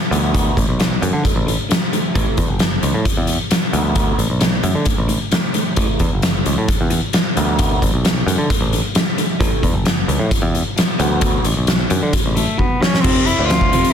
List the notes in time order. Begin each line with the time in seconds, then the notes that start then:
0.11 D2 D3 A3 B3, closed hi-hat
0.33 D3 A3 B3, kick, closed hi-hat
0.56 A1 D3 A3, kick, closed hi-hat
0.69 B1
0.79 D3 A3, snare, closed hi-hat
1.02 F#2 D3 A3, closed hi-hat
1.13 D3
1.24 D3 A3, kick, closed hi-hat
1.36 A1
1.47 D3 A3, closed hi-hat
1.69 D3 A3, snare, closed hi-hat
1.92 D3 A3, closed hi-hat
2.15 A1 A2 E3 A3, kick, closed hi-hat
2.37 E2 A2 E3, kick, closed hi-hat
2.48 F#1
2.59 A2 E3, snare, closed hi-hat
2.83 C#2 A2 E3, closed hi-hat
2.94 A2
3.05 A2 E3, kick, closed hi-hat
3.17 E2
3.27 A2 E3, closed hi-hat
3.51 A2 E3, snare, closed hi-hat
3.73 D2 D3 A3 B3, closed hi-hat
3.94 D3 A3 B3, kick, closed hi-hat
4.18 A1 D3 A3, closed hi-hat
4.30 B1
4.40 D3 A3, snare, closed hi-hat
4.63 F#2 D3 A3, closed hi-hat
4.75 D3
4.85 D3 A3, kick, closed hi-hat
4.98 A1
5.08 D3 A3, closed hi-hat
5.31 D3 A3, snare, closed hi-hat
5.54 D3 A3, closed hi-hat
5.76 A1 A2 E3 A3, kick, closed hi-hat
5.99 E2 A2 E3, kick, closed hi-hat
6.13 F#1
6.22 A2 E3, snare, closed hi-hat
6.45 C#2 A2 E3, closed hi-hat
6.58 A2
6.68 A2 E3, kick, closed hi-hat
6.81 E2
6.90 A2 E3, closed hi-hat
7.13 A2 E3, snare, closed hi-hat
7.36 D2 D3 A3 B3, closed hi-hat
7.58 D3 A3 B3, kick, closed hi-hat
7.81 A1 D3 A3, kick, closed hi-hat
7.94 B1
8.05 D3 A3, snare, closed hi-hat
8.26 F#2 D3 A3, closed hi-hat
8.38 D3
8.50 D3 A3, kick, closed hi-hat
8.61 A1
8.73 D3 A3, closed hi-hat
8.95 D3 A3, snare, closed hi-hat
9.18 D3 A3, closed hi-hat
9.39 A1 A2 E3 A3, kick, closed hi-hat
9.62 E2 A2 E3, kick, closed hi-hat
9.74 F#1
9.85 A2 E3, snare, closed hi-hat
10.08 C#2 A2 E3, closed hi-hat
10.19 A2
10.30 A2 E3, kick, closed hi-hat
10.42 E2
10.54 A2 E3, closed hi-hat
10.76 A2 E3, snare, closed hi-hat
10.98 D2 D3 F#3 B3, closed hi-hat
11.20 D3 F#3 B3, kick, closed hi-hat
11.44 A1 D3 F#3, closed hi-hat
11.57 B1
11.67 D3 F#3, snare, closed hi-hat
11.90 F#2 D3 F#3, closed hi-hat
12.03 D3
12.13 D3 F#3, kick, closed hi-hat
12.26 A1
12.35 D3 F#3 A3, closed hi-hat
12.57 D3 F#3 B3, kick
12.80 D3 F#3 C#4, snare
12.94 snare
13.00 F1 F2 C3 F3 C4, crash
13.05 kick
13.26 F2 C3 E4, closed hi-hat
13.39 D2
13.47 F2 C3 F4, snare, closed hi-hat
13.61 kick
13.72 F1 F2 C3 F3, closed hi-hat
13.84 closed hi-hat